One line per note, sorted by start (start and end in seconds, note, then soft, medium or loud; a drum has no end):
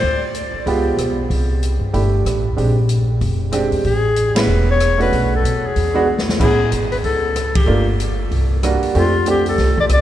0.00 0.50 D2 medium
0.00 0.23 C5 medium
0.34 closed hi-hat soft
0.53 muted upright bass stroke soft
0.66 0.96 C#2 medium
0.66 1.14 G#3 medium
0.66 1.14 B3 soft
0.66 1.14 F4 medium
0.66 1.15 G4 medium
0.66 kick soft
0.66 open hi-hat soft
0.97 1.27 B1 medium
0.97 cross-stick medium
0.97 closed hi-hat soft
1.30 1.78 C2 medium
1.30 kick soft
1.30 open hi-hat soft
1.63 closed hi-hat soft
1.80 1.92 G2 medium
1.93 2.23 G1 medium
1.93 2.41 A3 soft
1.93 2.41 D4 soft
1.93 2.41 E4 soft
1.93 2.41 G4 medium
1.93 kick soft
1.93 open hi-hat soft
2.25 2.55 A1 medium
2.25 cross-stick medium
2.25 closed hi-hat soft
2.56 3.18 A#1 medium
2.56 2.74 G#3 soft
2.56 2.75 C4 soft
2.56 2.75 D4 soft
2.56 2.75 G4 soft
2.56 kick soft
2.56 open hi-hat soft
2.89 closed hi-hat soft
3.21 3.69 F1 medium
3.21 kick soft
3.21 open hi-hat soft
3.52 3.84 G#3 medium
3.52 3.84 C4 medium
3.52 3.85 D4 medium
3.52 3.85 G4 medium
3.52 cross-stick medium
3.52 closed hi-hat medium
3.72 3.83 E2 medium
3.72 open hi-hat soft
3.84 4.45 A1 medium
3.84 4.40 G#4 medium
3.84 kick soft
3.84 open hi-hat soft
4.16 closed hi-hat soft
4.35 4.77 G#3 medium
4.35 4.77 B3 medium
4.35 4.78 C#4 soft
4.35 4.78 E4 medium
4.35 snare medium
4.35 ride medium
4.39 4.69 B4 medium
4.47 5.08 E1 medium
4.71 4.99 C#5 loud
4.80 cross-stick medium
4.80 closed hi-hat soft
4.98 5.41 A3 medium
4.98 5.41 C#4 medium
4.98 5.41 D4 soft
4.98 5.42 F#4 medium
4.98 5.31 B4 medium
4.98 open hi-hat soft
5.13 5.42 B1 medium
5.13 kick soft
5.13 open hi-hat soft
5.36 5.68 A4 medium
5.43 5.73 B2 medium
5.43 closed hi-hat soft
5.66 6.29 G#4 medium
5.76 6.37 E2 medium
5.76 kick soft
5.76 open hi-hat soft
5.94 6.06 G#3 medium
5.94 6.06 B3 medium
5.94 6.07 D4 medium
5.94 6.07 F#4 medium
6.18 snare medium
6.29 snare medium
6.39 6.70 A1 medium
6.39 6.57 G#3 medium
6.39 6.57 B3 medium
6.39 6.57 C#4 medium
6.39 6.58 E4 medium
6.39 6.71 G#4 medium
6.39 kick medium
6.39 crash medium
6.72 7.02 G#1 medium
6.72 closed hi-hat medium
6.92 6.97 B4 medium
6.92 open hi-hat soft
7.04 7.64 C#2 medium
7.04 7.57 A4 medium
7.04 kick soft
7.04 open hi-hat soft
7.36 cross-stick medium
7.36 closed hi-hat medium
7.55 7.87 G4 medium
7.55 kick medium
7.55 ride medium
7.66 8.28 G1 medium
7.66 7.84 A3 medium
7.66 7.85 A#3 medium
7.66 7.85 D4 medium
7.66 7.85 F4 medium
8.00 closed hi-hat medium
8.31 8.79 C2 medium
8.31 kick soft
8.31 open hi-hat soft
8.63 8.95 G3 medium
8.63 8.95 A#3 medium
8.63 8.94 D4 medium
8.63 8.96 F#4 medium
8.63 cross-stick medium
8.63 closed hi-hat soft
8.83 muted upright bass stroke soft
8.83 open hi-hat soft
8.95 9.55 F2 medium
8.95 9.12 A3 medium
8.95 9.13 C4 medium
8.95 9.13 D4 medium
8.95 9.26 F4 medium
8.95 9.13 G4 medium
8.95 kick soft
8.95 open hi-hat soft
9.26 9.74 A3 medium
9.26 9.74 C4 soft
9.26 9.75 D4 soft
9.26 9.75 G4 medium
9.26 closed hi-hat soft
9.30 9.47 G4 medium
9.46 9.77 A4 medium
9.46 open hi-hat soft
9.58 9.88 C2 medium
9.58 kick soft
9.58 snare soft
9.58 open hi-hat soft
9.78 9.85 D5 medium
9.78 kick soft
9.89 10.01 C2 medium
9.89 10.01 D5 loud
9.89 cross-stick medium
9.89 closed hi-hat medium